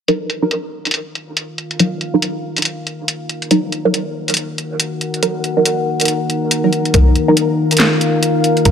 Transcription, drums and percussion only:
0.08 closed hi-hat
0.30 closed hi-hat
0.51 closed hi-hat
0.85 closed hi-hat
0.91 closed hi-hat
0.94 closed hi-hat
1.15 closed hi-hat
1.37 closed hi-hat
1.58 closed hi-hat
1.71 closed hi-hat
1.79 closed hi-hat
2.01 closed hi-hat
2.22 closed hi-hat
2.56 closed hi-hat
2.58 closed hi-hat
2.62 closed hi-hat
2.65 closed hi-hat
2.87 closed hi-hat
3.08 closed hi-hat
3.29 closed hi-hat
3.42 closed hi-hat
3.51 closed hi-hat
3.72 closed hi-hat
3.94 closed hi-hat
4.28 closed hi-hat
4.30 closed hi-hat
4.34 closed hi-hat
4.37 closed hi-hat
4.58 closed hi-hat
4.80 closed hi-hat
5.01 closed hi-hat
5.14 closed hi-hat
5.23 closed hi-hat
5.44 closed hi-hat
5.65 closed hi-hat
6.00 closed hi-hat
6.05 closed hi-hat
6.08 closed hi-hat
6.30 closed hi-hat
6.51 closed hi-hat
6.73 closed hi-hat
6.85 closed hi-hat
6.94 kick, closed hi-hat
7.16 closed hi-hat
7.37 closed hi-hat
7.71 closed hi-hat
7.77 snare, closed hi-hat
7.80 closed hi-hat
8.01 closed hi-hat
8.23 closed hi-hat
8.44 closed hi-hat
8.57 closed hi-hat
8.65 kick, closed hi-hat

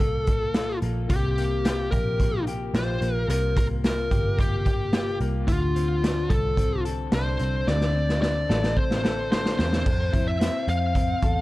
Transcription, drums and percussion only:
0.00 kick, closed hi-hat
0.27 kick, closed hi-hat
0.54 snare, closed hi-hat
0.82 closed hi-hat
1.10 kick, closed hi-hat
1.38 closed hi-hat
1.65 snare, closed hi-hat
1.92 kick, closed hi-hat
2.20 kick, closed hi-hat
2.47 closed hi-hat
2.74 snare, closed hi-hat
3.02 closed hi-hat
3.30 closed hi-hat
3.57 kick, closed hi-hat
3.84 snare, closed hi-hat
4.11 kick, closed hi-hat
4.39 kick, closed hi-hat
4.66 kick, closed hi-hat
4.93 snare, closed hi-hat
5.20 closed hi-hat
5.48 kick, closed hi-hat
5.76 closed hi-hat
6.04 snare, closed hi-hat
6.30 kick, closed hi-hat
6.57 kick, closed hi-hat
6.85 closed hi-hat
7.12 snare, closed hi-hat
7.39 closed hi-hat
7.67 snare
7.81 snare
8.09 snare
8.23 snare
8.50 snare
8.64 snare
8.77 kick
8.91 snare
9.05 snare
9.32 snare
9.46 snare
9.59 snare
9.73 snare
9.86 kick, crash
10.14 kick, closed hi-hat
10.41 snare, closed hi-hat
10.68 closed hi-hat
10.95 kick, closed hi-hat
11.22 kick, closed hi-hat

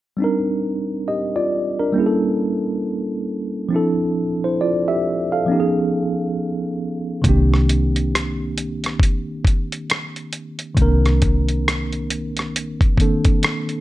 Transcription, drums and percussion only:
7.24 kick, closed hi-hat
7.54 cross-stick
7.69 closed hi-hat
7.96 closed hi-hat
8.15 cross-stick, closed hi-hat
8.58 closed hi-hat
8.84 cross-stick, closed hi-hat
9.00 kick, closed hi-hat
9.45 kick, closed hi-hat
9.72 closed hi-hat
9.90 cross-stick, closed hi-hat
10.16 closed hi-hat
10.33 closed hi-hat
10.59 closed hi-hat
10.77 kick, closed hi-hat
11.06 cross-stick, closed hi-hat
11.22 kick, closed hi-hat
11.49 closed hi-hat
11.68 cross-stick, closed hi-hat
11.93 closed hi-hat
12.10 closed hi-hat
12.37 cross-stick, closed hi-hat
12.56 closed hi-hat
12.81 kick, closed hi-hat
12.98 kick, closed hi-hat
13.25 kick, closed hi-hat
13.43 cross-stick, closed hi-hat
13.69 closed hi-hat

